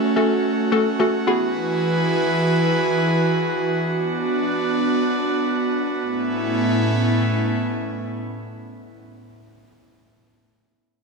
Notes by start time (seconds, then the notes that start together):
Already playing: A3 C#4 F#4
0.16 A3 C#4 F#4 A4
0.72 A3 C#4 F#4 A4
0.99 A3 C#4 F#4 A4
1.27 E3 B3 E4 F#4 G#4 B4
3.77 B3 D4
5.99 A2 A3 B3 C#4 E4